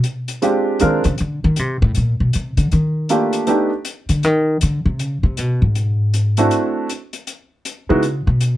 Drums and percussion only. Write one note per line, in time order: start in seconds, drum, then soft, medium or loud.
0.04 closed hi-hat soft
0.28 closed hi-hat soft
0.42 closed hi-hat soft
0.80 closed hi-hat soft
1.04 closed hi-hat soft
1.18 closed hi-hat soft
1.56 closed hi-hat soft
1.95 closed hi-hat soft
2.33 closed hi-hat soft
2.57 closed hi-hat soft
2.72 closed hi-hat soft
3.09 closed hi-hat soft
3.33 closed hi-hat soft
3.47 closed hi-hat soft
3.85 closed hi-hat soft
4.09 closed hi-hat soft
4.23 closed hi-hat soft
4.61 closed hi-hat medium
4.99 closed hi-hat soft
5.37 closed hi-hat soft
5.75 closed hi-hat soft
6.14 closed hi-hat soft
6.37 closed hi-hat soft
6.51 closed hi-hat soft
6.89 closed hi-hat soft
7.13 closed hi-hat soft
7.27 closed hi-hat soft
7.65 closed hi-hat soft
8.03 closed hi-hat soft
8.41 closed hi-hat soft